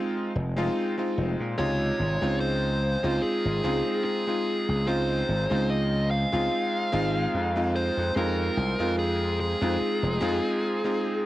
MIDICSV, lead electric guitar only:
0, 0, Header, 1, 2, 480
1, 0, Start_track
1, 0, Key_signature, -5, "major"
1, 0, Tempo, 821918
1, 927, Time_signature, 4, 2, 24, 8
1, 6575, End_track
2, 0, Start_track
2, 0, Title_t, "Lead electric guitar"
2, 0, Program_c, 0, 29
2, 924, Note_on_c, 0, 73, 98
2, 1401, Note_off_c, 0, 73, 0
2, 1404, Note_on_c, 0, 72, 94
2, 1880, Note_on_c, 0, 68, 94
2, 1900, Note_off_c, 0, 72, 0
2, 2355, Note_off_c, 0, 68, 0
2, 2362, Note_on_c, 0, 68, 91
2, 2846, Note_on_c, 0, 72, 101
2, 2859, Note_off_c, 0, 68, 0
2, 3328, Note_on_c, 0, 75, 99
2, 3341, Note_off_c, 0, 72, 0
2, 3564, Note_off_c, 0, 75, 0
2, 3567, Note_on_c, 0, 77, 109
2, 4530, Note_on_c, 0, 72, 96
2, 4555, Note_off_c, 0, 77, 0
2, 4751, Note_off_c, 0, 72, 0
2, 4772, Note_on_c, 0, 70, 94
2, 5226, Note_off_c, 0, 70, 0
2, 5249, Note_on_c, 0, 68, 92
2, 5483, Note_off_c, 0, 68, 0
2, 5490, Note_on_c, 0, 68, 84
2, 6575, Note_off_c, 0, 68, 0
2, 6575, End_track
0, 0, End_of_file